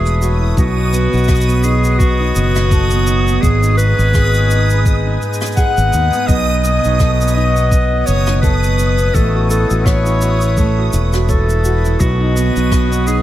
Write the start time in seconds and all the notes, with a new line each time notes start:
Already playing: E1 A3 E4 F#4 G#4 B4 C#5 D#6
0.05 E4, shaker
0.21 F#4, shaker
0.41 E4
0.57 B1 B2 B3 F#4, kick, shaker
0.77 D#4
0.93 B3, shaker
1.13 B1 D#4 F#4, shaker
1.17 shaker
1.23 shaker
1.28 kick, cross-stick, shaker
1.35 shaker
1.41 shaker
1.49 B3, shaker
1.63 D#4 G#4 D#5, shaker
1.84 B3, shaker
1.98 B2 F#4, kick, shaker
2.20 D#4
2.36 F#1 B3, shaker
2.56 D#4, cross-stick, shaker
2.71 A4, kick, shaker
2.90 B3, shaker
3.07 D#4, shaker
3.27 B3, shaker
3.41 G#1 G#2 G#3 G#4, kick, shaker
3.58 D#4
3.63 D#4 G#5, shaker
3.77 B3 B4, shaker
3.99 G#1 D#4, shaker
4.14 G#4, kick, cross-stick, shaker
4.34 B3, shaker
4.51 D#4, shaker
4.70 B3 B4, shaker
4.86 G#2, kick, shaker
5.07 D#4
5.22 B3, shaker
5.33 shaker
5.41 D#4, cross-stick, shaker
5.45 shaker
5.52 shaker
5.56 G#4 F#5, kick, shaker
5.77 G#1 B3, shaker
5.93 D#2 D#4, shaker
6.13 B3, shaker
6.27 B1 B2 B3 D#5, kick, shaker
6.49 D#4
6.54 D#5
6.64 B3, shaker
6.84 B1 D#4 C#5, shaker
6.91 F#4
7.00 A4, kick, cross-stick, shaker
7.21 B3, shaker
7.28 shaker
7.35 D#4 D#5
7.56 B3, shaker
7.72 B2, kick, shaker
7.92 D#4
8.06 F#1 B3 C#5, shaker
8.27 D#4, cross-stick, shaker
8.42 A4 B4, kick, shaker
8.63 B3, shaker
8.79 D#4, shaker
8.98 B3, shaker
9.14 A1 A3 A4, kick, shaker
9.23 E4
9.35 F#4
9.50 E4 A4, shaker
9.70 A1 F#4, shaker
9.80 B4
9.85 C#5, kick, cross-stick, shaker
10.06 E4, shaker
10.22 F#4, shaker
10.41 E4, shaker
10.57 A3, kick, shaker
10.78 F#4
10.93 E1 E4, shaker
11.13 F#4, cross-stick, shaker
11.28 A4 C#5, kick, shaker
11.48 E4, shaker
11.65 F#4, shaker
11.85 E4, shaker
12.00 B1 B2 B3 F#4, kick, shaker
12.20 D#4
12.25 D#5
12.35 B3 F#4, shaker
12.56 B1 D#4, shaker
12.72 kick, cross-stick, shaker
12.92 B3, shaker
13.07 D#4 G#4, shaker